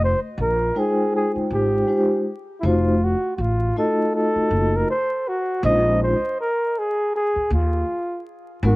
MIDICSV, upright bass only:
0, 0, Header, 1, 3, 480
1, 0, Start_track
1, 0, Tempo, 750000
1, 1686, Time_signature, 4, 2, 24, 8
1, 5606, End_track
2, 0, Start_track
2, 0, Title_t, "Upright bass"
2, 0, Program_c, 0, 32
2, 0, Note_on_c, 0, 29, 102
2, 80, Note_off_c, 0, 29, 0
2, 241, Note_on_c, 0, 34, 87
2, 441, Note_off_c, 0, 34, 0
2, 963, Note_on_c, 0, 32, 76
2, 1163, Note_off_c, 0, 32, 0
2, 1684, Note_on_c, 0, 29, 93
2, 2002, Note_off_c, 0, 29, 0
2, 2164, Note_on_c, 0, 33, 81
2, 2363, Note_off_c, 0, 33, 0
2, 2882, Note_on_c, 0, 30, 81
2, 3082, Note_off_c, 0, 30, 0
2, 3603, Note_on_c, 0, 34, 103
2, 3921, Note_off_c, 0, 34, 0
2, 4803, Note_on_c, 0, 39, 85
2, 5003, Note_off_c, 0, 39, 0
2, 5522, Note_on_c, 0, 32, 100
2, 5606, Note_off_c, 0, 32, 0
2, 5606, End_track
3, 0, Start_track
3, 0, Title_t, "Muted upright bass strokes"
3, 869, Note_on_c, 9, 29, 47
3, 933, Note_off_c, 9, 29, 0
3, 2788, Note_on_c, 9, 29, 46
3, 2852, Note_off_c, 9, 29, 0
3, 4710, Note_on_c, 9, 29, 47
3, 4774, Note_off_c, 9, 29, 0
3, 5606, End_track
0, 0, End_of_file